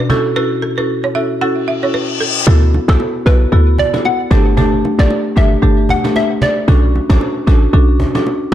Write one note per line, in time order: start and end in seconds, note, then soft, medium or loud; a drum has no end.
0.09 0.34 C#4 medium
0.09 0.34 E4 medium
0.09 0.34 F#4 medium
0.09 0.35 A4 loud
0.09 0.19 A4 medium
0.09 cajon slap loud
0.09 cajon slap medium
0.09 low conga medium
0.25 cajon slap soft
0.36 0.57 C#4 medium
0.36 0.57 E4 medium
0.36 0.57 F#4 medium
0.36 0.57 A4 loud
0.36 0.44 B4 loud
0.62 0.70 A4 medium
0.78 1.13 C#4 medium
0.78 1.13 E4 medium
0.78 1.13 F#4 medium
0.78 1.13 A4 medium
0.78 0.84 B4 medium
1.04 1.10 C#5 medium
1.15 1.40 C#4 medium
1.15 1.40 E4 medium
1.15 1.40 F#4 medium
1.15 1.40 A4 medium
1.15 1.23 E5 medium
1.41 1.79 C#4 medium
1.41 1.79 E4 medium
1.41 1.79 F#4 medium
1.41 1.80 A4 loud
1.41 1.49 F#5 medium
1.41 reverse cymbal medium
1.68 1.76 E5 medium
1.83 2.02 C#4 medium
1.83 2.02 E4 medium
1.83 2.02 F#4 medium
1.83 2.02 A4 medium
1.83 1.89 C#5 medium
1.94 2.02 B4 medium
2.20 2.28 A4 medium
2.47 2.79 D2 loud
2.47 2.68 B3 medium
2.47 2.68 E4 medium
2.47 2.68 F#4 medium
2.47 2.68 A4 loud
2.47 cajon bass loud
2.47 low conga medium
2.73 cajon slap soft
2.73 low bongo medium
2.88 2.97 B1 medium
2.88 3.23 B3 medium
2.88 3.23 E4 medium
2.88 3.23 F#4 medium
2.88 3.23 A4 medium
2.88 2.98 A4 medium
2.88 cajon bass medium
2.88 cajon slap loud
2.88 cajon slap medium
2.88 low bongo medium
3.00 cajon slap soft
3.00 high bongo medium
3.26 3.46 B1 loud
3.26 3.50 B3 medium
3.26 3.50 E4 medium
3.26 3.50 F#4 medium
3.26 3.51 A4 medium
3.26 3.39 B4 medium
3.26 cajon bass medium
3.26 cajon slap medium
3.41 cajon slap soft
3.52 3.84 D2 loud
3.52 3.73 B3 medium
3.52 3.73 E4 medium
3.52 3.73 F#4 medium
3.52 3.73 A4 loud
3.52 cajon slap soft
3.52 low conga medium
3.78 3.92 D5 medium
3.78 cajon bass loud
3.93 4.12 B3 medium
3.93 4.12 E4 medium
3.93 4.12 F#4 medium
3.93 4.12 A4 medium
3.93 cajon slap medium
3.93 low bongo medium
4.04 4.44 F#5 medium
4.04 cajon slap soft
4.04 high bongo medium
4.31 4.83 G1 loud
4.31 4.55 A3 medium
4.31 4.55 D4 medium
4.31 4.56 G4 medium
4.31 4.56 A4 loud
4.31 cajon slap loud
4.31 cajon slap medium
4.31 low conga medium
4.46 cajon slap soft
4.57 4.78 A3 medium
4.57 4.78 D4 medium
4.57 4.78 G4 medium
4.57 4.78 A4 loud
4.57 cajon bass loud
4.57 low conga medium
4.84 cajon slap soft
4.84 low bongo medium
4.99 5.07 A1 loud
4.99 5.34 A3 medium
4.99 5.34 D4 medium
4.99 5.34 G4 medium
4.99 5.34 A4 medium
4.99 5.09 D5 medium
4.99 cajon slap loud
4.99 cajon slap medium
4.99 low bongo medium
5.10 cajon slap soft
5.10 high bongo medium
5.36 5.57 G1 medium
5.36 5.61 A3 medium
5.36 5.61 D4 medium
5.36 5.61 G4 medium
5.36 5.61 A4 medium
5.36 5.50 E5 medium
5.36 cajon bass medium
5.36 cajon slap medium
5.52 cajon slap soft
5.62 5.94 G1 loud
5.62 6.00 A3 loud
5.62 6.00 D4 medium
5.62 6.01 G4 medium
5.62 6.01 A4 loud
5.62 cajon slap soft
5.62 low conga medium
5.89 6.03 F#5 medium
5.89 cajon bass loud
6.04 6.23 A3 medium
6.04 6.23 D4 medium
6.04 6.23 G4 medium
6.04 6.23 A4 medium
6.04 cajon slap medium
6.04 low bongo medium
6.16 6.29 E5 medium
6.16 cajon slap medium
6.16 high bongo medium
6.42 6.55 D5 medium
6.42 cajon slap loud
6.42 cajon slap medium
6.42 low conga medium
6.57 cajon slap soft
6.68 7.00 B1 loud
6.68 6.89 C#4 medium
6.68 6.89 D4 medium
6.68 6.89 F#4 medium
6.68 6.89 A4 loud
6.68 cajon bass loud
6.68 low conga medium
6.95 cajon slap soft
6.95 low bongo medium
7.09 7.18 A1 loud
7.09 7.44 C#4 medium
7.09 7.44 D4 medium
7.09 7.44 F#4 medium
7.09 7.45 A4 medium
7.09 cajon bass medium
7.09 cajon slap loud
7.09 cajon slap medium
7.09 low bongo medium
7.21 cajon slap soft
7.21 high bongo medium
7.47 7.67 A1 loud
7.47 7.71 C#4 medium
7.47 7.72 D4 medium
7.47 7.72 F#4 medium
7.47 7.72 A4 medium
7.47 cajon bass medium
7.47 cajon slap medium
7.62 cajon slap soft
7.73 8.05 B1 loud
7.73 7.94 C#4 medium
7.73 7.94 D4 medium
7.73 7.94 F#4 medium
7.73 7.94 A4 loud
7.73 cajon slap soft
7.73 low conga medium
8.00 cajon bass loud
8.15 8.33 C#4 medium
8.15 8.34 D4 medium
8.15 8.34 F#4 medium
8.15 8.34 A4 medium
8.15 cajon slap medium
8.15 low bongo medium
8.26 cajon slap soft
8.26 high bongo medium